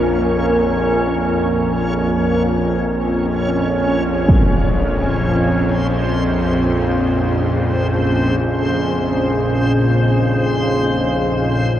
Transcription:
0.00 11.80 A#1 medium
0.00 11.80 F2 medium
0.00 9.17 A#3 medium
0.00 4.29 C#4 medium
0.00 6.74 F4 medium
0.00 4.28 A#4 medium
4.28 11.80 A#2 medium
4.28 11.80 C5 medium
4.28 impact medium
5.86 11.80 C#4 medium
6.04 11.80 G#4 medium
7.89 11.80 F5 medium
7.95 11.80 D#5 medium

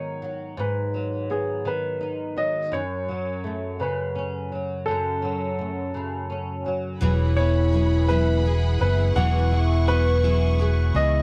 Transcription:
0.00 0.56 G#2 medium
0.00 1.64 D#3 soft
0.00 0.22 F#3 soft
0.00 1.29 B3 soft
0.00 1.99 D#4 soft
0.00 0.61 C#5 medium
0.22 0.94 F#3 soft
0.57 2.71 G#2 medium
0.57 1.33 B4 medium
0.94 2.36 F#3 soft
1.30 2.80 B3 soft
1.30 1.67 G#4 medium
1.65 2.80 D#3 soft
1.65 2.40 B4 medium
2.01 2.80 D#4 soft
2.37 3.08 F#3 soft
2.37 2.70 D#5 medium
2.72 4.87 F#2 medium
2.72 3.83 C#5 medium
3.09 4.52 F#3 soft
3.44 5.57 A3 soft
3.80 5.93 C#3 medium
3.80 4.48 B4 medium
4.15 6.28 C#4 soft
4.52 5.22 F#3 soft
4.86 7.02 F#2 medium
4.86 6.61 A4 medium
5.22 6.65 F#3 soft
5.59 7.09 A3 soft
5.94 7.01 C#3 soft
6.30 7.09 C#4 soft
6.66 7.41 F#3 soft
7.00 8.77 E1 medium
7.00 7.37 E3 medium
7.00 9.14 E3 medium
7.00 7.37 F#3 medium
7.00 7.38 B3 medium
7.00 11.22 E4 medium
7.00 7.37 E4 medium
7.00 11.22 G#4 medium
7.00 7.36 G#4 medium
7.00 11.22 F#5 medium
7.00 9.13 B5 medium
7.37 7.72 B3 soft
7.37 7.73 E4 soft
7.37 8.08 E4 soft
7.37 7.73 G#4 medium
7.37 8.05 C#5 medium
7.72 8.09 F#3 medium
7.72 8.08 B3 medium
7.72 9.86 B3 medium
7.72 8.08 E4 medium
7.72 8.07 G#4 medium
8.08 8.46 E3 medium
8.08 8.43 F#3 medium
8.08 8.44 B3 medium
8.08 8.45 E4 medium
8.08 8.79 E4 medium
8.08 8.45 G#4 medium
8.08 8.80 B4 medium
8.44 8.80 F#3 soft
8.44 8.81 B3 medium
8.44 8.80 E4 medium
8.44 10.58 G#4 medium
8.44 8.79 G#4 medium
8.80 9.14 F#1 medium
8.80 9.16 B3 soft
8.80 9.50 E4 soft
8.80 9.16 E4 soft
8.80 9.16 G#4 soft
8.80 9.14 B4 medium
9.15 10.91 E1 loud
9.15 11.22 E3 medium
9.15 9.52 E3 medium
9.15 9.52 F#3 medium
9.15 9.52 B3 medium
9.15 9.51 E4 medium
9.15 9.50 G#4 medium
9.15 9.90 F#5 medium
9.15 11.22 C#6 medium
9.51 9.87 B3 soft
9.51 10.22 E4 medium
9.51 9.88 E4 soft
9.51 9.87 G#4 medium
9.87 10.23 F#3 medium
9.87 11.22 B3 medium
9.87 10.24 B3 medium
9.87 10.23 E4 medium
9.87 10.23 G#4 medium
9.87 10.98 B4 loud
10.23 10.60 E3 soft
10.23 10.58 F#3 medium
10.23 10.59 B3 medium
10.23 10.94 E4 medium
10.23 10.59 E4 medium
10.23 10.59 G#4 medium
10.59 10.95 F#3 medium
10.59 10.95 B3 medium
10.59 10.95 E4 medium
10.59 11.22 G#4 medium
10.59 10.93 G#4 medium
10.95 11.22 C#2 medium
10.95 11.22 B3 soft
10.95 11.22 E4 soft
10.95 11.22 G#4 medium
10.95 11.22 D#5 medium

